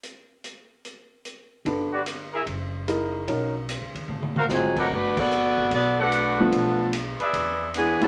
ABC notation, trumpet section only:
X:1
M:4/4
L:1/8
Q:"Swing" 1/4=148
K:G
V:1 name="Trumpet section"
z8 | z [FGBd] z [E_A_Be] z4 | z4 z [_G_Bc=f] z [=GA=B_g] | z4 z [FABf]3 |
z3 [_ABde]3 z2 |]